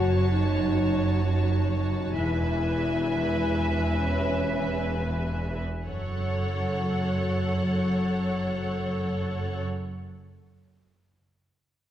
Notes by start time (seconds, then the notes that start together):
Already playing: F#1 F#2 F#4 C#5 A5
0.31 D#4
1.24 D#4
2.13 E1 E2 E4 B4 E5 G#5
3.98 C#4
4.94 B3
5.84 F#1 F#2 F#3 A4 C#5 F#5